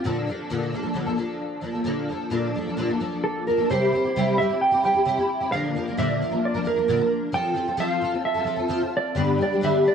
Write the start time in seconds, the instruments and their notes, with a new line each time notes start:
0.04 twelve-string acoustic guitar A#2 D3 F3 A#3 D4 A4
0.27 twelve-string acoustic guitar F3 A#3 D4 A4
0.50 twelve-string acoustic guitar A#2 D3 F3 A#3 D4 A4
0.72 twelve-string acoustic guitar F3 A#3 D4 A4
0.83 twelve-string acoustic guitar F3 A#3 D4 A4
0.94 twelve-string acoustic guitar A#2 D3 F3 A#3 D4 A4
1.06 twelve-string acoustic guitar F3 A#3 D4 A4
1.17 twelve-string acoustic guitar F3 A#3 D4 A4
1.61 twelve-string acoustic guitar F3 A#3 D4 A4
1.72 twelve-string acoustic guitar F3 A#3 D4 A4
1.84 twelve-string acoustic guitar A#2 D3 F3 A#3 D4 A4
2.09 twelve-string acoustic guitar F3 A#3 D4 A4
2.30 twelve-string acoustic guitar A#2 D3 F3 A#3 D4 A4
2.55 twelve-string acoustic guitar F3 A#3 D4 A4
2.66 twelve-string acoustic guitar A#3 D4 A4
2.70 twelve-string acoustic guitar F3
2.77 twelve-string acoustic guitar A#2 D3 F3 A#3 D4 A4
2.89 twelve-string acoustic guitar F3 A#3 D4 A4
3.00 twelve-string acoustic guitar F3 A#3 D4 A4
3.24 clean electric guitar A4
3.47 twelve-string acoustic guitar F3 A#3 D4 A4, clean electric guitar A#4
3.57 twelve-string acoustic guitar F3 A#3 D4 A4
3.70 twelve-string acoustic guitar C3 G3 C4 E4 G4, clean electric guitar C5
3.92 twelve-string acoustic guitar G3 C4 E4 G4
4.04 twelve-string acoustic guitar C4 E4 G4
4.16 twelve-string acoustic guitar C3 G3 C4 E4 G4
4.38 twelve-string acoustic guitar G3 C4 E4 G4, clean electric guitar E5
4.49 twelve-string acoustic guitar C4 E4 G4
4.61 clean electric guitar G5
4.71 twelve-string acoustic guitar C4 E4 G4
4.83 twelve-string acoustic guitar G3 C4 E4 G4, clean electric guitar G5
4.94 twelve-string acoustic guitar C4 E4 G4
5.05 twelve-string acoustic guitar C3 G3 C4 E4 G4
5.18 twelve-string acoustic guitar C4 E4 G4
5.40 twelve-string acoustic guitar C4 E4 G4
5.52 twelve-string acoustic guitar A#2 D3 F3 A#3 D4 A#4, clean electric guitar F5
5.75 twelve-string acoustic guitar F3 A#3 D4 A#4
5.87 twelve-string acoustic guitar F3 A#3 D4 A#4
5.97 twelve-string acoustic guitar A#2 D3 F3 A#3 D4 A#4, clean electric guitar E5
6.21 twelve-string acoustic guitar F3 A#3 D4 A#4
6.30 twelve-string acoustic guitar F3 A#3 D4 A#4
6.45 clean electric guitar D5
6.54 twelve-string acoustic guitar F3 A#3 D4 A#4
6.64 twelve-string acoustic guitar F3 A#3 D4 A#4, clean electric guitar A#4
6.75 twelve-string acoustic guitar F3 A#3 D4 A#4
6.88 twelve-string acoustic guitar A#2 D3 F3 A#3 D4 A#4
6.99 twelve-string acoustic guitar F3 A#3 D4 A#4
7.32 twelve-string acoustic guitar F3 C4 F4 A4, clean electric guitar G5
7.54 twelve-string acoustic guitar F3 C4 F4 A4
7.67 twelve-string acoustic guitar C4 F4 A4
7.77 twelve-string acoustic guitar F3 C4 F4 A4, clean electric guitar F5
8.01 twelve-string acoustic guitar F3 C4 F4 A4
8.11 twelve-string acoustic guitar C4 F4 A4
8.25 clean electric guitar E5
8.34 twelve-string acoustic guitar F4 A4
8.38 twelve-string acoustic guitar C4
8.44 twelve-string acoustic guitar F3 C4 F4
8.48 twelve-string acoustic guitar A4
8.56 twelve-string acoustic guitar C4 F4 A4
8.68 twelve-string acoustic guitar F3 C4 F4 A4
8.81 twelve-string acoustic guitar C4 F4 A4
8.97 clean electric guitar D5
9.15 twelve-string acoustic guitar G2 D3 G3 B3 D4 G4
9.38 twelve-string acoustic guitar G3 B3 D4
9.42 twelve-string acoustic guitar G4, clean electric guitar D5
9.52 twelve-string acoustic guitar G3 B3 D4 G4
9.61 twelve-string acoustic guitar G2 D3 G3 B3 D4 G4, clean electric guitar E5
9.84 twelve-string acoustic guitar G3 B3 D4 G4, clean electric guitar D5